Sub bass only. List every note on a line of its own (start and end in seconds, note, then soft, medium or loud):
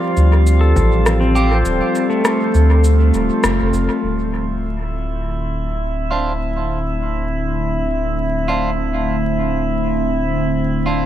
0.17 0.74 D2 medium
0.76 1.63 A1 loud
1.65 1.81 D1 medium
2.54 3.12 D2 medium
3.14 3.30 D1 medium
3.44 3.59 F1 loud
3.61 3.72 F1 loud
3.73 3.89 F1 medium
4.03 11.06 D1 medium